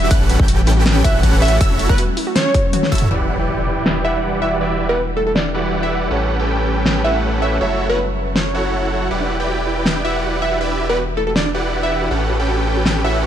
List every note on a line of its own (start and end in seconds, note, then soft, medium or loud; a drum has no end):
0.00 1.57 G3 medium
0.00 0.07 F#4 medium
0.00 0.11 E5 loud
0.11 0.38 A1 loud
0.11 1.59 A3 medium
0.11 0.37 C#4 medium
0.11 1.59 C#4 medium
0.11 0.37 G4 medium
0.11 0.37 A4 medium
0.11 0.37 B4 medium
0.11 0.37 F#5 medium
0.11 0.37 F#6 medium
0.11 kick loud
0.11 closed hi-hat medium
0.21 0.24 C#4 medium
0.29 0.38 F#4 medium
0.29 closed hi-hat medium
0.39 1.03 A1 loud
0.39 1.02 C#4 medium
0.39 1.02 G4 medium
0.39 1.02 A4 medium
0.39 1.02 B4 medium
0.39 1.02 G5 loud
0.39 1.02 G6 medium
0.39 kick loud
0.48 0.54 F#4 loud
0.48 closed hi-hat medium
0.67 0.70 E4 medium
0.67 open hi-hat loud
0.77 0.82 F#4 medium
0.86 snare loud
0.86 closed hi-hat medium
0.95 0.99 C#4 medium
1.04 1.59 A1 loud
1.04 1.59 C#4 medium
1.04 1.13 F#4 medium
1.04 1.59 G4 medium
1.04 1.59 A4 medium
1.04 1.59 B4 medium
1.04 1.19 E5 medium
1.04 1.59 F#5 medium
1.04 1.59 F#6 loud
1.04 kick loud
1.04 closed hi-hat medium
1.23 1.29 F#4 loud
1.23 kick medium
1.23 closed hi-hat medium
1.42 1.45 E4 medium
1.42 1.56 E5 loud
1.42 closed hi-hat medium
1.45 closed hi-hat medium
1.48 1.57 F#4 medium
1.48 closed hi-hat medium
1.61 1.87 F#1 loud
1.61 3.09 F#3 medium
1.61 3.09 C#4 medium
1.61 1.87 E4 medium
1.61 3.09 E4 medium
1.61 1.87 F#4 medium
1.61 3.09 A4 medium
1.61 1.87 A4 medium
1.61 1.87 C#5 medium
1.61 1.87 E5 loud
1.61 1.87 E6 loud
1.61 kick loud
1.61 closed hi-hat medium
1.71 1.74 C#4 medium
1.79 1.88 F#4 medium
1.79 closed hi-hat medium
1.89 1.95 F#1 loud
1.89 1.97 E4 medium
1.89 1.97 F#4 medium
1.89 1.97 A4 medium
1.89 2.03 B4 medium
1.89 1.97 C#5 medium
1.89 1.97 F#5 loud
1.89 1.97 F#6 loud
1.89 kick loud
1.98 2.04 F#4 loud
1.98 closed hi-hat medium
2.17 2.20 E4 medium
2.17 open hi-hat loud
2.27 2.32 F#4 medium
2.36 2.88 C#5 loud
2.36 snare loud
2.36 closed hi-hat medium
2.46 2.49 C#4 medium
2.54 2.63 F#4 medium
2.54 kick loud
2.54 closed hi-hat medium
2.73 2.79 F#4 loud
2.73 closed hi-hat medium
2.73 high tom medium
2.83 snare soft
2.83 high tom medium
2.92 3.09 F#1 medium
2.92 3.09 E4 medium
2.92 2.95 E4 medium
2.92 3.09 F#4 medium
2.92 3.09 A4 medium
2.92 3.09 C#5 medium
2.92 3.09 E5 loud
2.92 3.09 E6 loud
2.92 kick medium
2.92 closed hi-hat medium
2.95 closed hi-hat medium
2.98 3.07 F#4 medium
2.98 closed hi-hat medium
2.98 mid tom medium
3.09 6.09 E1 medium
3.09 4.01 E3 medium
3.09 6.08 E3 medium
3.09 7.57 G3 medium
3.09 6.08 D4 medium
3.09 4.02 E4 medium
3.09 3.37 E4 medium
3.09 3.37 G4 medium
3.09 4.03 G4 medium
3.09 3.37 B4 medium
3.09 3.37 D5 medium
3.09 3.37 F#5 medium
3.09 impact medium
3.13 4.03 D5 medium
3.39 4.02 E4 medium
3.39 4.02 G4 medium
3.39 4.02 B4 medium
3.39 4.02 D5 medium
3.39 4.02 G5 medium
3.86 snare loud
4.04 4.39 E3 medium
4.04 4.40 E4 medium
4.04 4.59 E4 medium
4.04 4.59 G4 medium
4.04 4.40 G4 medium
4.04 4.59 B4 medium
4.04 4.59 D5 medium
4.04 4.19 E5 medium
4.04 4.40 E5 medium
4.04 4.40 F#5 medium
4.04 4.59 F#5 medium
4.41 4.57 E3 medium
4.41 4.58 E4 medium
4.41 4.59 F#4 medium
4.41 4.59 G4 medium
4.41 4.59 D5 medium
4.41 4.56 E5 medium
4.59 5.51 E3 medium
4.59 5.52 E4 medium
4.59 4.87 E4 medium
4.59 5.52 F#4 medium
4.59 4.87 G4 medium
4.59 5.53 G4 medium
4.59 4.87 B4 medium
4.59 4.87 D5 medium
4.59 5.53 D5 loud
4.59 4.87 E5 loud
4.89 4.97 E4 medium
4.89 4.97 G4 medium
4.89 5.03 B4 medium
4.89 4.97 B4 medium
4.89 4.97 D5 medium
4.89 4.97 F#5 medium
5.17 5.23 A4 medium
5.27 5.32 A4 medium
5.35 5.50 D5 medium
5.35 snare loud
5.53 5.64 E3 medium
5.53 5.64 E4 medium
5.53 6.09 E4 medium
5.53 5.65 F#4 medium
5.53 6.09 G4 medium
5.53 5.65 G4 medium
5.53 6.09 B4 medium
5.53 6.09 D5 medium
5.53 5.65 E5 loud
5.53 6.09 F#5 medium
5.83 6.11 E5 medium
6.09 7.59 A1 medium
6.09 7.01 A3 medium
6.09 7.59 A3 medium
6.09 7.59 C#4 medium
6.09 6.37 C#4 medium
6.09 7.02 E4 medium
6.09 6.37 G4 medium
6.09 7.03 G4 medium
6.09 6.37 A4 medium
6.09 6.37 B4 medium
6.09 7.03 B4 medium
6.09 6.37 F#5 medium
6.13 7.03 C#5 medium
6.39 7.02 C#4 medium
6.39 7.02 G4 medium
6.39 7.02 A4 medium
6.39 7.02 B4 medium
6.39 7.02 G5 medium
6.86 snare loud
7.03 7.39 A3 medium
7.03 7.59 C#4 medium
7.03 7.40 E4 medium
7.03 7.59 G4 medium
7.03 7.40 G4 medium
7.03 7.59 A4 medium
7.03 7.59 B4 medium
7.03 7.40 B4 medium
7.03 7.19 E5 medium
7.03 7.40 E5 loud
7.03 7.40 F#5 medium
7.03 7.59 F#5 medium
7.41 7.58 A3 medium
7.41 7.58 E4 medium
7.41 7.58 F#4 medium
7.41 7.59 G4 medium
7.41 7.59 B4 medium
7.41 7.59 C#5 medium
7.41 7.56 E5 medium
7.59 9.09 F#1 medium
7.59 8.51 F#3 medium
7.59 9.09 F#3 medium
7.59 9.09 C#4 medium
7.59 9.09 E4 medium
7.59 7.87 E4 medium
7.59 8.52 F#4 medium
7.59 7.87 F#4 medium
7.59 9.09 A4 medium
7.59 7.87 A4 medium
7.59 8.52 A4 medium
7.59 7.87 C#5 medium
7.59 8.53 C#5 medium
7.59 7.87 E5 loud
7.63 8.53 E5 loud
7.89 7.97 E4 medium
7.89 7.97 F#4 medium
7.89 7.97 A4 medium
7.89 8.03 B4 medium
7.89 7.97 C#5 medium
7.89 7.97 F#5 loud
8.36 8.88 C#5 medium
8.36 snare loud
8.54 8.64 F#3 medium
8.54 9.09 E4 medium
8.54 8.64 F#4 medium
8.54 9.09 F#4 medium
8.54 8.65 A4 medium
8.54 9.09 A4 medium
8.54 9.09 C#5 medium
8.54 8.65 C#5 medium
8.54 9.09 F#5 medium
8.54 8.65 F#5 loud
9.11 12.09 E1 medium
9.11 12.08 E3 medium
9.11 12.08 D4 medium
9.11 9.37 E4 medium
9.11 13.26 G4 medium
9.11 9.37 G4 medium
9.11 9.37 B4 medium
9.11 9.37 D5 medium
9.11 9.37 F#5 medium
9.21 9.24 D4 medium
9.29 9.38 F#4 medium
9.40 10.02 E4 medium
9.40 10.02 G4 medium
9.40 10.03 B4 medium
9.40 10.02 D5 medium
9.40 10.02 G5 medium
9.48 9.54 F#4 loud
9.67 9.70 E4 medium
9.77 9.82 F#4 medium
9.86 snare loud
9.96 9.99 D4 medium
10.04 10.59 E4 medium
10.04 10.13 F#4 medium
10.04 10.59 G4 medium
10.04 10.59 B4 medium
10.04 10.59 D5 medium
10.04 10.19 E5 medium
10.04 10.59 F#5 medium
10.23 10.29 F#4 medium
10.42 10.45 E4 medium
10.42 10.56 E5 medium
10.52 10.57 F#4 medium
10.61 10.87 E4 medium
10.61 10.87 G4 medium
10.61 10.87 B4 medium
10.61 10.87 D5 medium
10.61 10.87 E5 loud
10.71 10.74 D4 medium
10.79 10.88 F#4 medium
10.89 10.97 E4 medium
10.89 10.97 G4 medium
10.89 10.97 B4 medium
10.89 11.03 B4 medium
10.89 10.97 D5 medium
10.89 10.97 F#5 medium
10.98 11.04 F#4 loud
11.17 11.20 E4 medium
11.17 11.23 A4 medium
11.27 11.32 F#4 medium
11.27 11.33 A4 medium
11.36 11.50 D5 medium
11.36 snare loud
11.46 11.49 D4 medium
11.54 12.09 E4 medium
11.54 11.63 F#4 medium
11.54 12.09 G4 medium
11.54 12.09 B4 medium
11.54 12.09 D5 medium
11.54 12.09 F#5 medium
11.73 11.79 F#4 loud
11.83 12.11 E5 medium
11.92 11.95 E4 medium
12.02 12.07 F#4 medium
12.11 13.26 A1 medium
12.11 13.26 A3 medium
12.11 13.26 C#4 medium
12.11 12.37 C#4 medium
12.11 12.37 G4 medium
12.11 12.37 A4 medium
12.11 12.37 B4 medium
12.11 12.37 F#5 medium
12.11 riser medium
12.21 12.24 C#4 medium
12.30 12.38 F#4 medium
12.39 13.02 C#4 medium
12.39 13.02 G4 medium
12.39 13.02 A4 medium
12.39 13.02 B4 medium
12.39 13.02 G5 medium
12.48 12.54 F#4 loud
12.67 12.70 E4 medium
12.77 12.82 F#4 medium
12.86 snare loud
12.96 12.99 C#4 medium
13.04 13.26 C#4 medium
13.04 13.13 F#4 medium
13.04 13.26 G4 medium
13.04 13.26 A4 medium
13.04 13.26 B4 medium
13.04 13.19 E5 medium
13.04 13.26 F#5 medium
13.23 13.26 F#4 loud